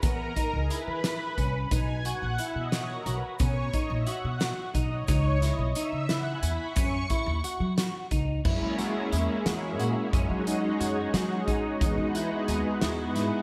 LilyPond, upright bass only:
\new Staff \with { instrumentName = "Upright bass" } { \clef bass \time 5/8 \key fis \mixolydian \tempo 4 = 89 e8 r16 cis,16 r16 e8 r16 bis,,8 | b,,8. ais,,16 r16 b,8. b,,16 r16 | b,8 r16 ais,,16 r16 b,8 r16 b,,8 | cis,8. b,,16 r16 cis8. e,16 r16 |
fis,8 r16 dis,16 r16 fis8 r16 cis,8 | fis,16 fis8 r16 e,16 r16 e,8 ais,16 r16 | fis,16 fis8. fis,8 fis8 r8 | e,16 e8 r16 dis,16 r16 dis,8 gis,16 r16 | }